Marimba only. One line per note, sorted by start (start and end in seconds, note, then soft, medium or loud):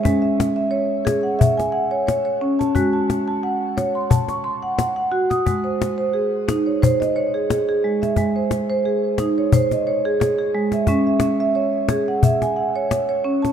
0.00 0.38 C#4 medium
0.00 0.21 E5 medium
0.05 2.72 G#3 medium
0.22 0.55 E5 medium
0.56 0.91 E5 medium
0.71 1.24 C#5 medium
1.05 1.40 G#4 medium
1.23 1.71 F#5 medium
1.39 1.74 E5 medium
1.57 2.07 G#5 medium
1.72 2.26 F#5 medium
1.91 2.06 C#5 medium
2.07 2.24 C#5 medium
2.25 2.75 C#5 medium
2.41 2.76 C#4 medium
2.59 2.92 A5 medium
2.75 5.42 G#3 medium
2.75 3.09 F#4 medium
2.93 3.26 A5 medium
3.28 3.62 A5 medium
3.43 3.96 F#5 medium
3.77 4.11 C#5 medium
3.95 4.43 C6 medium
4.10 4.45 A5 medium
4.29 4.79 C#6 medium
4.44 4.97 C6 medium
4.63 4.77 F#5 medium
4.78 4.95 F#5 medium
4.96 5.46 F#5 medium
5.12 5.46 F#4 medium
5.30 5.64 D#6 medium
5.46 5.80 G#3 medium
5.64 5.97 C5 soft
5.98 6.32 C5 medium
6.13 6.66 G#4 medium
6.48 6.82 D#4 medium
6.66 7.15 C#5 soft
6.82 7.16 C5 medium
7.00 7.49 D#5 medium
7.16 7.68 C#5 medium
7.34 7.49 G#4 medium
7.50 7.67 G#4 medium
7.69 8.18 G#4 medium
7.84 8.16 G#3 medium
8.02 8.51 E5 medium
8.18 8.51 G#3 medium
8.36 8.68 C5 soft
8.70 9.03 C5 medium
8.85 9.37 G#4 medium
9.19 9.53 D#4 medium
9.38 9.86 C#5 medium
9.54 9.87 C5 medium
9.72 10.21 D#5 medium
9.87 10.39 C#5 medium
10.05 10.19 G#4 medium
10.20 10.37 G#4 medium
10.39 10.88 G#4 medium
10.54 10.87 G#3 medium
10.73 11.06 E5 medium
10.88 13.53 G#3 medium
10.88 11.22 C#4 medium
11.07 11.39 E5 medium
11.40 11.74 E5 medium
11.55 12.08 C#5 medium
11.90 12.23 G#4 medium
12.08 12.55 F#5 medium
12.24 12.57 E5 medium
12.42 12.91 G#5 medium
12.56 13.09 F#5 medium
12.76 12.89 C#5 medium
12.91 13.08 C#5 medium
13.09 13.53 C#5 medium
13.24 13.53 C#4 medium
13.42 13.53 A5 medium